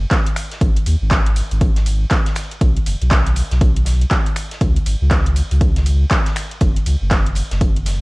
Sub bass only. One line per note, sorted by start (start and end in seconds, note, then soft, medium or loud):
0.61 0.79 G#1 loud
0.86 0.96 D#2 medium
1.01 1.42 G#1 medium
1.51 2.05 G#1 loud
2.61 2.79 B1 loud
2.86 2.96 F#1 medium
3.01 3.42 B1 medium
3.51 4.05 B1 loud
4.61 4.79 C#2 loud
4.86 4.95 G#1 medium
5.01 5.42 C#2 medium
5.51 6.05 C#2 medium
6.61 6.79 F#1 loud
6.86 6.95 C#2 medium
7.01 7.42 F#1 medium
7.51 8.01 F#1 medium